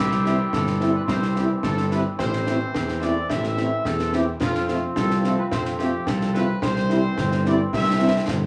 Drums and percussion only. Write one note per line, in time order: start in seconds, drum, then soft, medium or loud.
0.11 snare soft
0.26 snare soft
0.53 concert bass drum medium
0.53 snare medium
0.67 snare soft
0.81 snare soft
1.08 concert bass drum medium
1.08 snare medium
1.22 snare soft
1.36 snare soft
1.63 concert bass drum medium
1.63 snare medium
1.77 snare soft
1.91 snare medium
2.19 concert bass drum medium
2.19 snare medium
2.33 snare soft
2.47 snare medium
2.75 concert bass drum medium
2.75 snare medium
2.88 snare soft
3.02 snare soft
3.30 concert bass drum medium
3.30 snare medium
3.44 snare soft
3.57 snare soft
3.85 concert bass drum medium
3.85 snare medium
3.99 snare soft
4.13 snare soft
4.41 concert bass drum medium
4.41 snare medium
4.41 crash soft
4.55 snare soft
4.68 snare medium
4.96 concert bass drum medium
4.96 snare medium
5.10 snare soft
5.24 snare soft
5.52 concert bass drum medium
5.52 snare medium
5.65 snare soft
5.79 snare soft
6.07 concert bass drum medium
6.07 snare medium
6.21 snare soft
6.35 snare soft
6.62 concert bass drum medium
6.62 snare medium
6.76 snare soft
6.90 snare medium
7.18 concert bass drum medium
7.18 snare medium
7.32 snare soft
7.45 snare soft
7.73 concert bass drum medium
7.73 snare medium
8.28 concert bass drum medium
8.28 snare medium